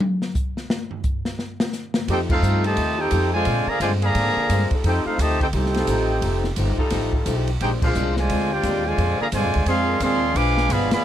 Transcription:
0.00 high tom
0.22 snare
0.35 kick, hi-hat pedal
0.57 snare
0.70 snare
0.91 floor tom
1.04 kick, hi-hat pedal
1.25 snare
1.39 snare
1.60 snare
1.73 snare, hi-hat pedal
1.94 snare
2.07 F2 F3 A3 C4 D#4 G4 A4 C5 G5, ride
2.30 A3 C4 D#4 F4 A4 C5 F5, kick, crash
2.42 G2 F3 A3 D#4 G4, hi-hat pedal
2.64 C3 D#3 G3 A3 D#4 F4 G4 A4 C5 D#5 A5, ride
2.76 D#2 F3 A3 D#4 G4, ride
2.98 G3 C4 D#4 F4 G4 A4 C5 G5
3.11 F2 F3 A3 D#4 G4, hi-hat pedal, ride
3.33 D3 F3 G#3 F4 C5 D5 G#5
3.45 A#2 G#3 C4 D4, ride
3.67 D3 F3 A#3 G#4 D5 F5 A#5, muted upright bass stroke
3.80 G2 A#2 D3 F3 G#3 C4 D4 F4 C5 D5 G#5, hi-hat pedal, ride
4.01 D3 F3 A#3 G#4 D5 F5 A#5, ride
4.15 G#2 A#2 G#3 C4 D4, ride
4.36 muted upright bass stroke
4.49 G2 A#2 G#3 C4 D4, hi-hat pedal, ride
4.71 G3 D#4 F4 A4, muted upright bass stroke, kick, ride
4.84 F2 F3 A3 C4 D#4 G4 A4 C5 G5, ride
4.88 G4
5.05 A3 C4 D#4 F4 A4 C5 F5, muted upright bass stroke
5.18 D2 C3 D#3 F3 A3 D#4 G4 C5 D#5 A5, hi-hat pedal, ride
5.40 C4 D#4 G4 A4 C5 G5, kick, ride
5.53 C2 F3 A3 C4 D#4 G4 A4 C5 G5, ride
5.66 snare
5.74 G3 D#4 F4 A4, snare, ride
5.87 A1 F3 A3 D#4 G4, hi-hat pedal, ride
6.21 F1 F3 A3 D#4, ride
6.26 G4
6.44 snare
6.56 G1 F3 A3 D#4 G4, hi-hat pedal, ride
6.77 G3 D#4 F4 A4, muted upright bass stroke, kick
6.90 A1 F3 A3 D#4 G4, snare, ride
7.12 G3 D#4 F4 A4, kick
7.26 B1 F3 A3 D#4 G4, hi-hat pedal, ride
7.47 ride
7.60 A#1 A#2 G#3 C4 D4 D#4 G4 G#4 C5 G5, ride
7.81 G#3 C4 D4 F4 G#4 A#4 C5 F5, kick, crash
7.95 C2 A#2 G#3 C4 D4, hi-hat pedal
8.17 D3 F3 G#3 F4 C5 D5 G#5, snare
8.29 D2 A#2 G#3 C4 D4, ride
8.51 G#3 D4 F4 G4 C5 D5 G5
8.63 D#2 A#2 G#3 C4 D4, hi-hat pedal, ride
8.85 D3 F3 G#3 F4 C5 D5 G#5
8.97 F2 A#2 G#3 C4 D4, ride
9.19 D3 F3 A#3 G#4 D5 F5 A#5, muted upright bass stroke
9.32 G2 A#2 D3 F3 G#3 C4 D4 F4 C5 D5 G#5, hi-hat pedal, ride
9.44 F2
9.54 D2, ride
9.66 F2 A#2 F3 G#3 C4 D4 G#4 D5 F5 C6, ride
9.87 G#3 C4 D4 A#4
10.00 D#2 A#2 F3 G#3 C4 D4 G#4 D5 F5 C6, hi-hat pedal, ride
10.34 B1 B2 F3 G#3 D4 B4 F5 G#5 D6, ride
10.57 snare
10.69 G1 B2 F3 G#3 B3 D4 G#4 D5 F5 B5, hi-hat pedal, ride
10.91 F3 G#3 B3 G#4 D5 F5 B5, muted upright bass stroke, snare, ride

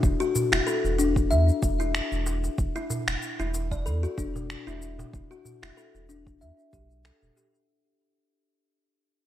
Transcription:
Already playing: E4
0.03 E1, kick, cabasa
0.20 F#4, darbuka ka, cabasa
0.35 darbuka dum, cabasa
0.52 E1 E4, finger snap, cabasa
0.67 A4, cabasa
0.84 E1, darbuka tek, cabasa
0.98 D4, darbuka ka, darbuka tek, cabasa
1.16 kick, cabasa
1.31 E2 E5, cabasa
1.49 cabasa
1.63 E1, kick, darbuka ka, cabasa
1.80 E4, cabasa
1.95 finger snap, cabasa
2.12 E1, cabasa
2.26 darbuka tek, cabasa
2.44 darbuka ka, cabasa
2.58 E1, kick, cabasa
2.76 E4, cabasa
2.90 darbuka dum, cabasa
3.08 E1, finger snap, cabasa
3.22 cabasa
3.39 E1 E4, darbuka tek, cabasa
3.54 darbuka tek, cabasa
3.71 D5, kick, cabasa
3.86 E2 A4, cabasa
4.03 F#4, cabasa
4.17 E1 D4, kick, darbuka tek, cabasa
4.36 darbuka ka, darbuka dum, cabasa
4.50 finger snap, cabasa
4.67 E1 E4, cabasa
4.82 cabasa
4.99 darbuka ka, darbuka tek, darbuka dum, cabasa
5.13 E1, kick, cabasa
5.31 F#4, darbuka ka, cabasa
5.45 darbuka dum, cabasa
5.63 E1 E4, finger snap, cabasa
5.77 A4, cabasa
5.95 E1, darbuka tek, cabasa
6.09 D4, darbuka ka, darbuka tek, cabasa
6.27 kick, cabasa
6.41 E2 E5, cabasa
6.59 cabasa
6.73 B1 G4, kick, darbuka ka, cabasa
6.91 cabasa
7.05 A4, finger snap, cabasa
7.22 E1, darbuka dum, cabasa
7.37 G4, darbuka tek, cabasa
7.54 darbuka ka, cabasa

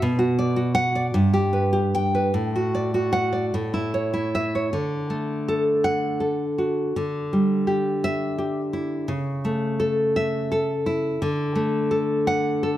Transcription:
0.02 B2
0.19 F#4
0.39 D5
0.56 F#4
0.75 F#5
0.95 D5
1.14 G2
1.34 G4
1.53 B4
1.73 G4
1.95 G5
2.15 B4
2.34 A2
2.56 F#4
2.75 D5
2.94 F#4
3.13 F#5
3.33 D5
3.54 A2
3.74 E4
3.94 C#5
4.14 E4
4.35 E5
4.55 C#5
4.73 D3
5.10 A3
5.48 A4
5.84 F#5
6.20 A4
6.58 F#4
6.96 D3
7.33 G3
7.67 G4
8.04 E5
8.38 G4
8.73 E4
9.08 C#3
9.45 A3
9.80 A4
10.16 E5
10.52 A4
10.86 E4
11.22 D3
11.55 A3
11.91 A4
12.27 F#5
12.63 A4

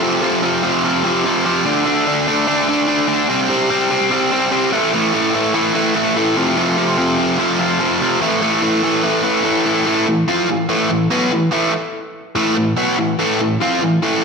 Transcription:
Already playing: A3
0.02 F2 C3 F3
0.22 F2 C3 F3
0.42 F2 C3 F3
0.63 F2 C3 F3
0.84 F2 C3 F3
1.04 F2 C3 F3
1.25 F2 C3 F3
1.46 F2 C3 F3
1.65 D3 A3 D4
1.86 D3 A3 D4
2.07 D3 A3 D4
2.27 D3 A3 D4
2.47 D3 A3 D4
2.68 D3 A3 D4
2.88 D3 A3 D4
3.08 D3 A3 D4
3.29 C3 G3 C4
3.49 C3 G3 C4
3.70 C3 G3 C4
3.91 C3 G3 C4
4.11 C3 G3 C4
4.32 C3 G3 C4
4.52 C3 G3 C4
4.72 A2 E3 A3
4.93 A2 E3 A3
5.14 A2 E3 A3
5.34 A2 E3 A3
5.54 A2 E3 A3
5.75 A2 E3 A3
5.95 A2 E3 A3
6.16 A2 E3 A3
6.36 F2 C3 F3
6.57 F2 C3 F3
6.77 F2 C3 F3
6.97 F2 C3 F3
7.18 F2 C3 F3
7.39 F2 C3 F3
7.59 F2 C3 F3
7.80 F2 C3 F3
8.01 F2 C3 F3
8.21 A2 E3 A3
8.42 A2 E3 A3
8.62 A2 E3 A3
8.83 A2 E3 A3
9.03 A2 E3 A3
9.23 A2 E3 A3
9.44 A2 E3 A3
9.65 A2 E3 A3
9.86 A2 E3 A3
10.07 A2 E3
10.28 F3 C4 F4
10.49 A2 E3
10.69 A2 E3 A3
10.90 A2 E3
11.11 B2 F#3 B3
11.32 A2 E3
11.52 A2 E3 A3
12.35 A2 E3 A3
12.56 A2 E3
12.77 B2 F#3 B3
12.98 A2 E3
13.19 A2 E3 A3
13.40 A2 E3
13.60 F3 C4 F4
13.82 A2 E3
14.02 A2 E3 A3

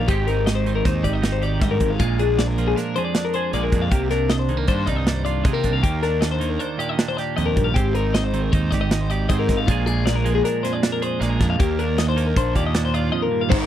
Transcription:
0.08 G#1 G#2 D#3 C4 D#4 G4, kick, closed hi-hat
0.27 D#4 A#4, closed hi-hat
0.46 D#5, snare, closed hi-hat
0.55 C5
0.66 D#3 C4, closed hi-hat
0.75 A#4
0.85 D#2 D#4 C5, kick, snare, closed hi-hat
1.03 G#1 D#3 G4 D5, kick, closed hi-hat
1.13 D#5
1.22 D#4, snare, closed hi-hat
1.32 C5
1.42 G4 D5, closed hi-hat
1.60 G2 G#2 D#5, kick, snare, closed hi-hat
1.71 A#4
1.80 G#1 G#2, kick, closed hi-hat
1.90 F5
2.00 A#1 A#2 G#3 F4, kick, closed hi-hat
2.19 D4 G#4, closed hi-hat
2.38 D5, snare, closed hi-hat
2.48 A#4
2.58 F3 G#3, closed hi-hat
2.68 G#4
2.76 D4 A#4, snare, closed hi-hat
2.96 F2 G#4 C5, closed hi-hat
3.05 D5
3.15 D4, snare, closed hi-hat
3.25 A#4
3.34 G#4 C5, closed hi-hat
3.53 A#1 A#2 G#3 D5, closed hi-hat
3.63 A#4
3.72 F2 D4, kick, closed hi-hat
3.82 F5
3.91 C2 C3 A#3 G4, kick, closed hi-hat
4.11 D4 A#4, snare, closed hi-hat
4.29 D#5, snare, closed hi-hat
4.39 C5
4.49 D#3 G#3, closed hi-hat
4.57 A#3 A#4
4.68 G2 D4 C5, kick, closed hi-hat
4.86 C2 G2 D#4 D5, kick, closed hi-hat
4.96 D#5
5.07 D4, snare, closed hi-hat
5.15 C5
5.25 F4 D5, closed hi-hat
5.44 C3 G#3 D#5, kick, closed hi-hat
5.53 A#3 A#4
5.64 C2 D4, kick, closed hi-hat
5.73 F5
5.82 D#2 A#3 G4, kick, closed hi-hat
6.03 D4 A#4, snare, closed hi-hat
6.21 D#5, snare, closed hi-hat
6.31 C5
6.40 D#3 A#3, closed hi-hat
6.50 A#4
6.59 D4 C5, closed hi-hat
6.78 A#2 G4 D5, closed hi-hat
6.89 D#5
6.99 D4, snare, closed hi-hat
7.08 C5
7.17 G4 D5, snare, closed hi-hat
7.37 D#2 F2 D#5, closed hi-hat
7.46 A#4
7.56 A#1 G2, kick, closed hi-hat
7.64 F5
7.74 G#1 G#2 C4 G4, kick, closed hi-hat
7.95 D#4 A#4, closed hi-hat
8.14 D#5, snare, closed hi-hat
8.24 C5
8.33 D#3 C4, closed hi-hat
8.42 A#4
8.52 D#2 D#4 C5, kick, closed hi-hat
8.71 G#1 D#3 G4 D5, kick, snare, closed hi-hat
8.81 D#5
8.91 D#4, snare, closed hi-hat
9.01 C5
9.10 G4 D5, closed hi-hat
9.29 G#2 C4 D#5, kick, closed hi-hat
9.39 A#4
9.49 G#1 D#4, kick, snare, closed hi-hat
9.57 F5
9.67 A#1 A#2 F3 G#3 D4 F4, kick, closed hi-hat
9.71 G#4
9.86 D4 G#4, closed hi-hat
10.06 D5, snare, closed hi-hat
10.16 A#4
10.24 F3 G#3, closed hi-hat
10.35 G#4
10.44 D4 A#4, snare, closed hi-hat
10.63 F2 G#4 C5, snare, closed hi-hat
10.73 D5
10.83 D4, snare, closed hi-hat
10.92 A#4
11.02 G#4 C5, closed hi-hat
11.20 A#1 A#2 G#3 D5, snare, closed hi-hat
11.30 A#4
11.40 F2 D4, kick, snare, closed hi-hat
11.50 F5
11.59 D#2 A#3 G4, kick, closed hi-hat
11.79 D4 A#4, closed hi-hat
11.98 D#5, snare, closed hi-hat
12.09 C5
12.16 D#3 A#3, closed hi-hat
12.27 A#4
12.36 A#1 D4 C5, kick, closed hi-hat
12.55 D#2 A#2 G4 D5, kick, closed hi-hat
12.66 D#5
12.75 D4, snare, closed hi-hat
12.85 C5
12.94 F4 D5, closed hi-hat
13.12 F2 D#5
13.22 A#4
13.31 G2
13.41 F5
13.50 G#1 G#2 D#3 G#3 C4 D#4 C5, kick, crash
13.60 A#4

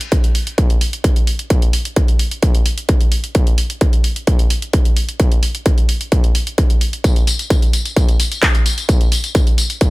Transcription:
0.01 closed hi-hat
0.12 kick, closed hi-hat
0.24 closed hi-hat
0.35 open hi-hat
0.47 closed hi-hat
0.58 kick, closed hi-hat
0.70 closed hi-hat
0.81 open hi-hat
0.93 closed hi-hat
1.04 kick, closed hi-hat
1.16 closed hi-hat
1.27 open hi-hat
1.39 closed hi-hat
1.50 kick, closed hi-hat
1.62 closed hi-hat
1.73 open hi-hat
1.85 closed hi-hat
1.96 kick, closed hi-hat
2.08 closed hi-hat
2.19 open hi-hat
2.31 closed hi-hat
2.43 kick, closed hi-hat
2.55 closed hi-hat
2.66 open hi-hat
2.78 closed hi-hat
2.89 kick, closed hi-hat
3.01 closed hi-hat
3.12 open hi-hat
3.24 closed hi-hat
3.35 kick, closed hi-hat
3.47 closed hi-hat
3.58 open hi-hat
3.70 closed hi-hat
3.81 kick, closed hi-hat
3.93 closed hi-hat
4.04 open hi-hat
4.16 closed hi-hat
4.27 kick, closed hi-hat
4.39 closed hi-hat
4.50 open hi-hat
4.62 closed hi-hat
4.73 kick, closed hi-hat
4.85 closed hi-hat
4.97 open hi-hat
5.09 closed hi-hat
5.20 kick, closed hi-hat
5.32 closed hi-hat
5.43 open hi-hat
5.55 closed hi-hat
5.66 kick, closed hi-hat
5.78 closed hi-hat
5.89 open hi-hat
6.01 closed hi-hat
6.12 kick, closed hi-hat
6.24 closed hi-hat
6.35 open hi-hat
6.47 closed hi-hat
6.58 kick, closed hi-hat
6.70 closed hi-hat
6.81 open hi-hat
6.93 closed hi-hat
7.04 kick, closed hi-hat, tambourine
7.16 closed hi-hat, tambourine
7.27 open hi-hat, tambourine
7.39 closed hi-hat, tambourine
7.50 kick, closed hi-hat, tambourine
7.62 closed hi-hat, tambourine
7.73 open hi-hat, tambourine
7.85 closed hi-hat, tambourine
7.96 kick, closed hi-hat, tambourine
8.09 closed hi-hat, tambourine
8.20 open hi-hat, tambourine
8.32 closed hi-hat, tambourine
8.43 kick, clap, closed hi-hat, tambourine
8.55 closed hi-hat, tambourine
8.66 open hi-hat, tambourine
8.78 closed hi-hat, tambourine
8.89 kick, closed hi-hat, tambourine
9.01 closed hi-hat, tambourine
9.12 open hi-hat, tambourine
9.24 closed hi-hat, tambourine
9.35 kick, closed hi-hat, tambourine
9.47 closed hi-hat, tambourine
9.58 open hi-hat, tambourine
9.70 closed hi-hat, tambourine
9.81 kick, closed hi-hat, tambourine

